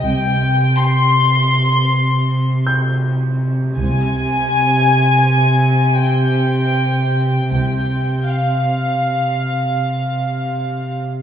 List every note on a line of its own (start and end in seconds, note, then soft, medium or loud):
0.02 0.74 C2 soft
0.02 3.74 C3 soft
0.02 0.77 G5 medium
0.78 2.66 C6 medium
2.67 4.87 G6 soft
3.78 4.49 C2 medium
3.78 7.50 C3 medium
3.78 5.99 G#5 medium
6.04 7.53 G5 medium
7.54 8.25 C2 soft
7.54 11.05 C3 soft
7.54 8.27 G5 soft
8.28 10.91 F5 soft